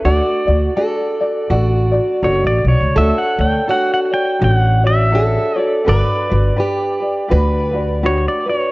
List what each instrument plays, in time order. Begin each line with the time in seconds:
0.05 upright bass D2, ukulele D4 F#4 A4 D5, steel-string acoustic guitar F#4, pedal steel guitar D5
0.47 upright bass D2, ukulele D4 F#4 D5
0.76 ukulele D4 F#4 A4 D5, steel-string acoustic guitar A4
1.21 ukulele D4 F#4 D5
1.50 upright bass A1, ukulele D4 F#4 A4 D5, steel-string acoustic guitar F#4
1.92 ukulele D4 F#4 D5
2.22 upright bass F#1, ukulele D4 F#4 A4 D5, pedal steel guitar C#5
2.44 upright bass A1, pedal steel guitar D5
2.65 upright bass B1, ukulele D4 F#4, pedal steel guitar C#5
2.81 upright bass C#2
2.96 upright bass D2, ukulele D4 F#4 A4 C#5, steel-string acoustic guitar A4, pedal steel guitar E5
3.18 pedal steel guitar F#5
3.38 upright bass D2, ukulele D4 C#5, pedal steel guitar G5
3.67 ukulele D4 F#4 A4 C#5, steel-string acoustic guitar F#4, pedal steel guitar F#5
3.94 pedal steel guitar F#5
4.11 ukulele D4 C#5, pedal steel guitar G5
4.39 upright bass A1, ukulele D4 F#4 A4 C#5
4.44 pedal steel guitar F#5
4.84 ukulele D4 F#4 C#5, pedal steel guitar E5
5.12 ukulele D4 F#4 A4 C#5, steel-string acoustic guitar A4
5.56 ukulele D4 F#4 C#5, pedal steel guitar D5
5.85 upright bass G1, ukulele D4 F#4 G4 B4, steel-string acoustic guitar B4
5.89 pedal steel guitar D5
6.29 upright bass G1, ukulele D4 F#4 B4
6.56 ukulele D4 G4 B4, steel-string acoustic guitar G4
7.00 ukulele D4 B4
7.29 upright bass D2, ukulele D4 F#4 G4 B4, steel-string acoustic guitar B4
7.72 ukulele D4 F#4 B4
8.03 ukulele D4 F#4 G4 B4, pedal steel guitar C#5
8.28 pedal steel guitar D5
8.46 ukulele D4 F#4 B4, pedal steel guitar C#5